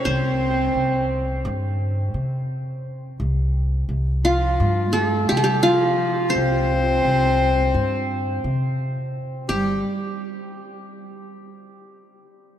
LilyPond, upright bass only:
\new Staff \with { instrumentName = "Upright bass" } { \clef bass \time 9/8 \tempo 4. = 57 c,4 c,4 g,4 c4. | c,4 c,4 g,4 c4. | c,4 c,4 g,4 c4. | g,,8 r1 | }